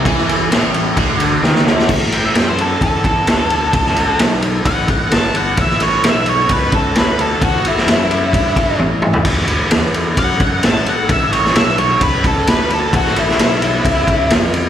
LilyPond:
<<
  \new Staff \with { instrumentName = "Lead electric guitar" } { \time 4/4 \key a \mixolydian \tempo 4 = 130 r1 | r8 g''16 e''16 g''16 c''16 a'8 a'2~ | a'4 r4 fis''4 a''8 fis''8 | e''8 cis''8 e''8 cis''8 b'8 a'8 b'8 a'8 |
fis'8 e'8 e'2 r4 | r2 fis''4 a''8 fis''8 | e''8 cis''8 e''8 cis''8 b'8 a'8 b'8 a'8 | fis'8 e'8 e'2 r4 | }
  \new Staff \with { instrumentName = "Overdriven electric guitar" } { \clef bass \time 4/4 \key a \mixolydian e4 a,4 d4 dis8 d8 | r1 | r1 | r1 |
r1 | r1 | r1 | r1 | }
  \new Staff \with { instrumentName = "Fingered electric bass" } { \clef bass \time 4/4 \key a \mixolydian e,4 a,,4 d,4 dis,8 d,8 | a,4 fis,4 e,4 d,4 | cis,4 b,,4 a,,4 g,,4 | a,,4 b,,4 cis,4 d,4 |
e,8 r8 fis,4 g,4 a,4 | d,4 e,4 fis,4 a,8 r8 | a,,4 b,,4 cis,4 d,4 | a,,4 b,,4 cis,4 f,4 | }
  \new DrumStaff \with { instrumentName = "Drums" } \drummode { \time 4/4 <bd cymr>16 sn16 cymr8 <cymr sn>8 cymr8 <bd cymr>8 cymr8 sn16 sn16 sn16 sn16 | <cymc bd>8 cymr8 <cymr sn>8 cymr8 <bd cymr>8 <bd cymr>8 <cymr sn>8 cymr8 | <bd cymr>16 sn16 cymr8 <cymr sn>8 cymr8 <bd cymr>8 <bd cymr>8 <cymr sn>8 cymr8 | <bd cymr>16 sn16 cymr8 <cymr sn>8 cymr8 <bd cymr>8 <bd cymr>8 <cymr sn>8 cymr8 |
<bd cymr>8 cymr16 sn16 <cymr sn>8 cymr8 <bd cymr>8 <bd cymr>8 tommh8 toml16 tomfh16 | <cymc bd cymr>16 sn16 cymr8 <cymr sn>8 cymr8 <bd cymr>8 <bd cymr>8 <cymr sn>8 cymr8 | <bd cymr>8 cymr16 sn16 <cymr sn>8 cymr8 <bd cymr>8 <bd cymr>8 <cymr sn>8 cymr8 | <bd cymr>16 sn16 cymr16 sn16 <cymr sn>8 cymr8 <bd cymr>8 <bd cymr>8 <cymr sn>8 cymr8 | }
>>